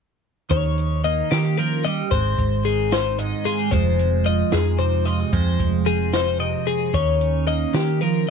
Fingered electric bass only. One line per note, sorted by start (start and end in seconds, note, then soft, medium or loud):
0.51 1.21 D#2 medium
1.31 2.02 D#3 medium
2.12 2.35 G#1 medium
2.38 3.32 G#1 medium
3.72 4.42 F1 loud
4.53 5.23 F2 medium
5.33 5.56 F2 medium
5.60 6.54 F1 medium
6.94 7.64 D#2 medium
7.74 8.30 D#3 medium